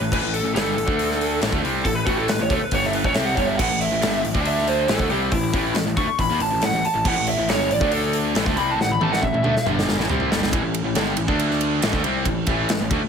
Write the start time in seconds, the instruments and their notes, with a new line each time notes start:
Already playing: lead electric guitar B4
0.00 picked electric bass A1, distorted electric guitar A2 E3
0.12 picked electric bass A1, distorted electric guitar A2 E3, lead electric guitar B4, kick, crash
0.22 picked electric bass A1, distorted electric guitar A2 E3
0.34 lead electric guitar A4, open hi-hat
0.43 picked electric bass A1, distorted electric guitar A2 E3
0.54 picked electric bass G1, distorted electric guitar G2 D3 G3, lead electric guitar A4, snare, open hi-hat
0.76 picked electric bass A1, distorted electric guitar A2 E3, open hi-hat
0.85 picked electric bass D2, distorted electric guitar D3 A3 D4, kick
0.99 open hi-hat
1.12 snare
1.21 open hi-hat
1.41 picked electric bass A1, distorted electric guitar A2 E3, snare, open hi-hat
1.51 picked electric bass D2, distorted electric guitar D3 A3, kick
1.62 picked electric bass C2, distorted electric guitar C3 G3 C4, open hi-hat
1.85 picked electric bass A1, distorted electric guitar A2 E3, lead electric guitar A4, kick, open hi-hat
1.95 lead electric guitar B4
2.06 picked electric bass A1, distorted electric guitar A2 E3 A3, lead electric guitar F#4, kick, open hi-hat
2.18 lead electric guitar A4
2.28 picked electric bass A1, distorted electric guitar A2 E3, lead electric guitar B4, snare, open hi-hat
2.39 picked electric bass A1, distorted electric guitar A2 E3, lead electric guitar C#5
2.50 picked electric bass D2, distorted electric guitar D3 A3, lead electric guitar A4, kick, open hi-hat
2.62 lead electric guitar B4, muted picked electric bass stroke, muted distorted electric guitar stroke
2.71 picked electric bass G1, distorted electric guitar G2 D3 G3, lead electric guitar C#5, kick, open hi-hat
2.84 lead electric guitar E5, snare
2.93 lead electric guitar B4, open hi-hat
3.04 picked electric bass A1, distorted electric guitar A2 E3, lead electric guitar C#5, kick
3.14 picked electric bass C2, distorted electric guitar C3 G3 C4, lead electric guitar E5, snare, open hi-hat
3.26 lead electric guitar F#5
3.35 picked electric bass G1, distorted electric guitar G2 D3 G3, lead electric guitar C#5, kick, open hi-hat
3.47 lead electric guitar E5
3.58 picked electric bass A1, distorted electric guitar A2 E3, lead electric guitar F#5, kick, crash
3.71 picked electric bass A1, distorted electric guitar A2 E3
3.81 lead electric guitar E5, open hi-hat
3.92 picked electric bass A1, distorted electric guitar A2 E3
4.02 picked electric bass G1, distorted electric guitar G2 D3 G3, snare, open hi-hat
4.25 picked electric bass A1, distorted electric guitar A2 E3, open hi-hat
4.34 picked electric bass D2, distorted electric guitar D3 A3 D4, kick
4.45 lead electric guitar E5, open hi-hat
4.59 snare
4.67 lead electric guitar C5, open hi-hat
4.88 picked electric bass A1, distorted electric guitar A2 E3, lead electric guitar A4, snare, open hi-hat
4.99 picked electric bass D2, distorted electric guitar D3 A3, kick, snare
5.10 picked electric bass C2, distorted electric guitar C3 G3 C4, lead electric guitar G4, open hi-hat
5.32 picked electric bass A1, distorted electric guitar A2 E3, lead electric guitar E4, kick, open hi-hat
5.53 picked electric bass A1, distorted electric guitar A2 E3 A3, kick, open hi-hat
5.75 picked electric bass A1, distorted electric guitar A2 E3, snare, open hi-hat
5.85 picked electric bass A1, distorted electric guitar A2 E3
5.97 picked electric bass D2, distorted electric guitar D3 A3, lead electric guitar C#6, kick, open hi-hat
6.07 muted picked electric bass stroke, muted distorted electric guitar stroke
6.19 picked electric bass A1, distorted electric guitar A2 E3, lead electric guitar B5, kick, open hi-hat
6.29 picked electric bass D#2, distorted electric guitar D#3 A#3
6.39 picked electric bass A1, distorted electric guitar A2, lead electric guitar A5, open hi-hat
6.44 distorted electric guitar E3
6.52 picked electric bass A1, distorted electric guitar A2 E3
6.61 picked electric bass A1, distorted electric guitar A2, lead electric guitar F#5, snare, open hi-hat
6.65 distorted electric guitar A2 E3
6.73 picked electric bass A1, distorted electric guitar A2 E3, snare
6.84 lead electric guitar A5, muted picked electric bass stroke, muted distorted electric guitar stroke, open hi-hat
6.95 picked electric bass A1, distorted electric guitar A2 E3
7.05 picked electric bass A1, distorted electric guitar A2 E3, lead electric guitar F#5, kick, crash
7.17 picked electric bass A1, distorted electric guitar A2 E3
7.27 lead electric guitar E5, open hi-hat
7.38 picked electric bass A1, distorted electric guitar A2 E3
7.48 picked electric bass G1, distorted electric guitar G2 D3 G3, lead electric guitar C#5, snare, open hi-hat
7.70 picked electric bass A1, distorted electric guitar A2 E3, lead electric guitar D5, open hi-hat
7.80 picked electric bass D2, distorted electric guitar D3 A3 D4, kick
7.92 lead electric guitar A4, open hi-hat
8.13 open hi-hat
8.34 picked electric bass A1, distorted electric guitar A2 E3, snare, open hi-hat
8.46 picked electric bass D2, distorted electric guitar D3 A3, kick
8.56 picked electric bass C2, distorted electric guitar C3 G3 C4, lead electric guitar B5, open hi-hat
8.71 lead electric guitar A5
8.78 picked electric bass A1, distorted electric guitar A2 E3, lead electric guitar F#5, snare
8.91 lead electric guitar B5, high tom
9.00 picked electric bass A1, distorted electric guitar A2 E3 A3, lead electric guitar A5, high tom
9.12 lead electric guitar F#5, snare
9.22 picked electric bass A1, distorted electric guitar A2 E3, lead electric guitar E5, kick
9.33 picked electric bass A1, distorted electric guitar A2 E3, mid tom
9.42 picked electric bass D2, distorted electric guitar D3 A3, mid tom
9.55 muted distorted electric guitar stroke, muted picked electric bass stroke, snare
9.65 picked electric bass G1, distorted electric guitar G2 D3 G3, mid tom
9.79 snare
9.89 snare
9.98 picked electric bass A1, distorted electric guitar A2 E3, snare
10.09 picked electric bass C2, distorted electric guitar C3 G3 C4, floor tom
10.20 floor tom
10.31 picked electric bass G1, distorted electric guitar G2 D3 G3, snare
10.43 snare
10.52 picked electric bass A1, distorted electric guitar A2 E3, kick, ride
10.62 picked electric bass A1, distorted electric guitar A2 E3
10.74 ride
10.83 picked electric bass A1, distorted electric guitar A2 E3
10.95 picked electric bass G1, distorted electric guitar G2 D3 G3, snare, ride
11.17 picked electric bass A1, distorted electric guitar A2 E3, ride
11.28 picked electric bass D2, distorted electric guitar D3 A3 D4, kick
11.39 ride
11.51 snare
11.61 ride
11.82 picked electric bass A1, distorted electric guitar A2 E3, snare, ride
11.92 picked electric bass D2, distorted electric guitar D3 A3, kick, snare
12.04 picked electric bass C2, distorted electric guitar C3 G3 C4, ride
12.25 picked electric bass A1, distorted electric guitar A2 E3, kick, ride
12.47 picked electric bass A1, distorted electric guitar A2 E3 A3, kick, ride
12.69 picked electric bass A1, distorted electric guitar A2 E3, snare, ride
12.80 picked electric bass A1, distorted electric guitar A2 E3
12.91 picked electric bass D2, distorted electric guitar D3 A3, kick, ride
13.03 muted picked electric bass stroke, muted distorted electric guitar stroke